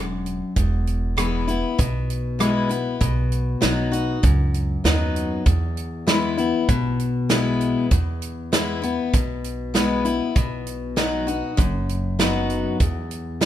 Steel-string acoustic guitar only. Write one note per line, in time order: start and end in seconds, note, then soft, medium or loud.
0.00 0.53 F#2 medium
0.56 1.73 E2 medium
1.17 1.47 E3 medium
1.17 1.47 G#3 medium
1.17 1.47 B3 medium
1.17 1.46 E4 medium
1.48 1.78 B3 soft
1.48 1.77 E4 medium
1.79 2.95 B2 medium
2.39 2.69 E3 medium
2.39 2.69 G#3 medium
2.39 2.70 B3 medium
2.39 2.68 E4 medium
2.69 3.00 B3 soft
2.69 2.99 E4 medium
3.01 4.17 B2 medium
3.61 3.91 F#3 medium
3.61 3.91 B3 medium
3.61 3.92 D#4 medium
3.61 3.90 F#4 medium
3.92 4.23 D#4 soft
3.92 4.22 F#4 medium
4.23 5.40 F#2 medium
4.84 5.43 F#3 medium
4.84 5.43 B3 medium
4.84 5.43 D#4 medium
4.84 5.44 F#4 medium
5.46 6.62 E2 medium
6.07 6.36 E3 medium
6.07 6.37 G#3 medium
6.07 6.37 B3 medium
6.07 6.36 E4 medium
6.38 6.68 B3 soft
6.38 6.67 E4 soft
6.69 7.85 B2 medium
7.29 7.88 E3 medium
7.29 7.88 G#3 medium
7.29 7.89 B3 medium
7.29 7.89 E4 medium
7.91 9.07 E2 medium
8.52 8.82 E3 medium
8.52 8.82 G#3 medium
8.52 8.82 B3 medium
8.52 8.81 E4 medium
8.82 9.13 B3 soft
8.82 9.12 E4 medium
9.13 10.30 B2 medium
9.74 10.04 E3 medium
9.74 10.04 G#3 medium
9.74 10.04 B3 medium
9.74 10.04 E4 medium
10.05 10.35 B3 soft
10.05 10.34 E4 medium
10.36 11.52 B2 medium
10.96 11.26 F#3 medium
10.96 11.26 B3 medium
10.96 11.27 D#4 medium
10.96 11.26 F#4 medium
11.27 11.58 D#4 soft
11.27 11.57 F#4 medium
11.57 12.74 F#2 medium
12.19 12.77 F#3 medium
12.19 12.78 B3 medium
12.19 12.78 D#4 medium
12.19 12.78 F#4 medium
12.80 13.45 E2 medium
13.41 13.45 E3 medium
13.41 13.45 G#3 medium
13.41 13.45 B3 medium